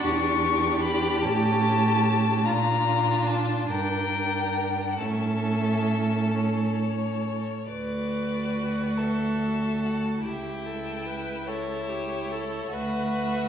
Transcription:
0.00 1.21 D4 medium
0.00 2.41 G4 medium
0.00 0.82 C#6 loud
0.05 1.25 E2 medium
0.82 1.23 B5 loud
1.22 2.45 A2 medium
1.22 2.42 C#4 medium
1.22 2.47 A5 loud
2.45 3.67 A#2 medium
2.45 4.96 D4 medium
2.45 3.66 F4 medium
2.45 3.28 A#5 loud
3.26 3.70 A5 medium
3.69 5.01 G2 medium
3.69 4.96 A#4 medium
3.69 4.94 G5 loud
4.92 5.02 F#5 soft
4.98 7.47 A2 medium
4.98 7.44 C#4 medium
4.98 7.43 A4 medium
4.98 6.34 E5 medium
6.35 7.65 C#5 medium
7.68 10.21 D2 medium
7.68 10.21 F#4 medium
7.68 8.99 B4 soft
7.68 9.00 D5 medium
8.98 10.22 A4 soft
8.98 9.86 E5 medium
9.84 10.06 F#5 medium
10.04 10.24 A5 medium
10.23 12.69 C#2 medium
10.23 11.44 E4 soft
10.23 10.67 G4 soft
10.23 11.49 G5 medium
10.66 11.08 A4 soft
11.06 11.49 B4 medium
11.45 12.69 E4 soft
11.45 11.90 A4 soft
11.45 12.72 C#5 medium
11.89 12.33 G4 soft
12.32 12.75 A4 medium
12.71 13.48 D2 medium
12.71 13.48 F#4 medium
12.71 13.48 B4 medium
12.71 13.48 E5 medium

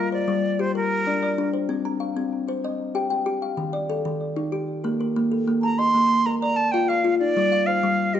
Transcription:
0.00 0.12 G3 medium
0.00 0.44 F5 medium
0.12 0.60 C5 medium
0.12 0.62 D5 medium
0.28 0.60 G3 medium
0.59 0.91 G4 medium
0.59 0.75 C5 medium
0.75 1.23 A#4 medium
0.75 1.50 A#4 medium
1.07 1.37 D4 medium
1.07 1.21 D5 medium
1.23 1.70 D5 medium
1.38 1.70 D4 medium
1.53 1.85 C5 medium
1.69 2.01 C4 medium
1.85 2.33 A#5 medium
2.00 2.48 F5 medium
2.17 2.48 C4 medium
2.48 2.80 C5 medium
2.64 3.12 D#5 medium
2.95 3.25 G4 medium
2.95 3.09 G5 medium
3.10 3.58 G5 medium
3.26 3.58 G4 medium
3.42 3.74 F5 medium
3.57 3.90 D#3 medium
3.73 4.21 D5 medium
3.90 4.37 A4 medium
4.05 4.37 D#3 medium
4.36 4.68 D#4 medium
4.52 5.00 G4 medium
4.84 5.15 A#3 medium
4.84 4.99 A#4 medium
5.01 5.48 A#4 medium
5.16 5.46 A#3 medium
5.32 5.63 A4 medium
5.47 5.79 A#3 medium
5.62 6.11 A5 medium
5.62 5.80 A#5 medium
5.78 6.26 D#5 medium
5.78 6.27 C6 medium
5.95 6.26 A#3 medium
6.26 6.58 A#4 medium
6.26 6.39 A#5 medium
6.39 6.90 D5 medium
6.39 6.58 A#5 medium
6.56 6.73 A5 medium
6.72 7.03 F4 medium
6.72 6.89 F5 medium
6.72 6.90 G5 medium
6.88 7.18 F5 medium
6.88 7.37 F5 medium
7.04 7.36 F4 medium
7.19 7.53 D#4 medium
7.19 7.68 D5 medium
7.37 7.68 G3 medium
7.52 8.00 F5 medium
7.66 8.16 C5 medium
7.66 8.15 F5 medium
7.83 8.15 G3 medium
8.14 8.20 G4 medium
8.14 8.20 D#5 medium

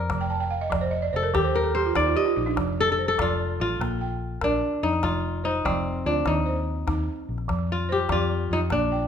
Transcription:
0.00 0.11 A#4 medium
0.00 1.22 A#4 medium
0.00 0.47 C5 medium
0.00 0.32 D5 medium
0.00 0.59 D5 loud
0.00 calabash click soft
0.10 0.69 F1 medium
0.10 0.52 F3 medium
0.10 calabash thump medium
0.10 calabash click medium
0.21 0.39 G5 medium
0.21 calabash click soft
0.30 0.50 A5 medium
0.40 0.60 G5 medium
0.50 0.70 F5 medium
0.61 0.81 D#5 medium
0.70 1.11 F1 medium
0.70 1.12 F3 medium
0.70 0.91 D5 medium
0.70 calabash thump medium
0.70 calabash click medium
0.81 1.01 C5 medium
0.81 calabash click soft
0.91 1.11 D#5 medium
1.02 1.22 D5 medium
1.13 1.33 F1 loud
1.13 1.61 A4 medium
1.13 1.32 C5 medium
1.23 1.42 A#4 medium
1.33 1.92 D#2 medium
1.33 1.75 D#3 medium
1.33 2.76 G4 medium
1.33 1.53 A4 medium
1.33 calabash thump medium
1.33 calabash click medium
1.44 1.63 C5 medium
1.55 1.74 A#4 medium
1.55 2.86 A#4 medium
1.64 1.84 A4 medium
1.64 calabash click soft
1.75 1.94 G4 medium
1.75 2.93 C5 medium
1.75 calabash click soft
1.85 2.05 F4 medium
1.95 2.14 D#2 medium
1.95 2.15 D#4 medium
1.95 2.22 D5 loud
1.95 calabash thump medium
1.95 calabash click medium
2.06 2.24 F4 medium
2.16 2.35 G4 medium
2.16 3.23 D#5 medium
2.25 2.45 F4 medium
2.25 calabash click soft
2.36 2.56 A#1 loud
2.36 2.56 D#4 medium
2.46 2.66 D4 medium
2.46 calabash click soft
2.57 3.16 F1 medium
2.57 2.98 F3 medium
2.57 calabash thump medium
2.57 calabash click medium
2.68 calabash click soft
2.80 2.91 A4 loud
2.92 3.08 A4 medium
2.98 3.60 C5 medium
3.08 4.40 A4 loud
3.08 calabash click soft
3.18 3.57 F1 loud
3.18 3.60 F3 medium
3.18 3.61 F4 medium
3.18 3.81 D5 medium
3.18 calabash thump medium
3.18 calabash click medium
3.60 3.79 A1 medium
3.60 4.01 F4 medium
3.60 5.03 F4 loud
3.79 4.38 A#1 medium
3.79 4.22 A#3 medium
3.79 calabash thump medium
3.79 calabash click medium
4.01 4.63 G5 medium
4.41 4.61 A#1 medium
4.41 4.89 D4 medium
4.41 4.83 A#4 medium
4.41 calabash thump medium
4.41 calabash click medium
4.52 calabash click soft
4.83 5.02 F2 medium
4.83 5.44 D#4 medium
4.93 calabash click soft
5.03 5.61 F1 medium
5.03 5.45 F3 medium
5.03 6.55 F4 medium
5.03 calabash thump medium
5.03 calabash click medium
5.14 calabash click soft
5.44 6.12 D#4 medium
5.44 6.06 C5 medium
5.55 calabash click soft
5.65 6.03 F1 medium
5.65 6.06 F3 medium
5.65 7.45 C4 medium
5.65 6.27 D5 medium
5.65 calabash thump medium
5.65 calabash click medium
6.06 6.25 D2 medium
6.06 6.33 D4 medium
6.06 6.47 F4 medium
6.26 6.84 D#2 medium
6.26 6.67 D#3 medium
6.26 7.90 D#4 medium
6.26 calabash thump medium
6.26 calabash click medium
6.46 7.08 C5 medium
6.87 7.07 D#2 medium
6.87 7.28 D#4 medium
6.87 calabash thump medium
6.87 calabash click medium
6.98 calabash click soft
7.29 7.48 A#1 medium
7.38 calabash click soft
7.48 8.07 F2 loud
7.48 7.90 F3 medium
7.48 calabash thump medium
7.48 calabash click medium
7.59 calabash click soft
7.72 8.12 F4 medium
7.89 9.07 G4 medium
7.89 8.51 C5 medium
7.99 calabash click soft
8.09 8.48 F2 loud
8.09 8.51 F3 medium
8.09 9.07 F4 loud
8.09 8.71 D5 medium
8.09 calabash thump medium
8.09 calabash click medium
8.51 8.70 F2 medium
8.51 8.59 D#4 medium
8.51 8.92 F4 medium
8.70 9.07 A#1 loud
8.70 9.07 A#3 medium
8.70 9.07 D4 medium
8.70 calabash thump medium
8.70 calabash click medium
8.92 9.07 G5 medium

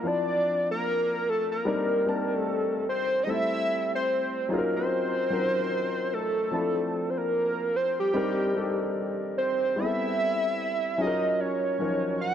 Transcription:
0.03 1.26 F3 medium
0.03 1.27 C4 soft
0.03 1.27 D4 medium
0.03 1.27 E4 medium
0.03 0.69 D5 loud
0.03 1.28 A5 medium
0.71 1.31 A#4 medium
1.29 1.50 A4 loud
1.52 2.39 A#4 loud
1.65 1.99 G3 medium
1.65 1.99 C4 medium
1.65 2.00 D4 medium
1.65 2.00 D#4 medium
1.65 2.00 A#4 medium
2.06 3.00 G3 medium
2.06 3.00 C4 medium
2.06 3.00 D4 medium
2.06 3.01 D#4 medium
2.06 3.01 A5 medium
2.39 2.85 A4 loud
2.89 3.25 C5 loud
3.23 4.49 G3 medium
3.23 4.49 A3 medium
3.23 3.31 D#5 medium
3.28 4.49 C4 medium
3.28 4.50 E4 medium
3.28 4.50 A4 medium
3.28 3.93 E5 loud
3.95 4.54 C5 loud
4.49 5.16 F#3 medium
4.49 5.17 C#4 medium
4.49 5.17 D#4 medium
4.49 5.17 F4 medium
4.49 4.58 G#4 medium
4.49 4.74 A#4 loud
4.58 5.21 A#4 medium
4.76 6.15 C5 loud
5.30 6.24 F#3 medium
5.30 6.24 C#4 medium
5.30 6.25 D#4 medium
5.30 6.25 F4 medium
5.30 6.25 A#4 medium
6.14 7.11 A4 loud
6.51 7.75 F3 medium
6.51 7.75 C4 medium
6.51 7.75 D4 medium
6.51 7.76 E4 medium
6.51 7.76 A5 medium
7.10 7.19 C5 medium
7.17 7.78 A#4 loud
7.76 7.98 C5 medium
8.00 9.16 G4 medium
8.14 8.48 G3 medium
8.14 8.48 C4 medium
8.14 8.48 D4 medium
8.14 8.49 D#4 medium
8.14 8.49 A#4 medium
8.54 9.48 G3 medium
8.54 9.48 C4 medium
8.54 9.49 D4 medium
8.54 9.49 D#4 medium
8.54 9.49 A4 medium
9.38 9.80 C5 loud
9.76 10.98 G3 medium
9.76 10.98 B3 medium
9.76 10.98 C4 medium
9.76 10.99 E4 medium
9.76 9.85 G#4 soft
9.76 11.03 E5 loud
9.85 11.02 A4 medium
10.98 11.65 F#3 medium
10.98 11.65 C#4 medium
10.98 11.66 D#4 medium
10.98 11.66 F4 medium
10.98 11.07 G#4 medium
10.98 11.42 D#5 loud
11.07 11.70 A#4 medium
11.40 12.21 C#5 medium
11.79 12.34 F3 medium
11.79 12.34 F#3 medium
11.79 12.34 C#4 medium
11.79 12.34 D#4 medium
11.79 12.34 A#4 medium
12.21 12.34 F#5 medium

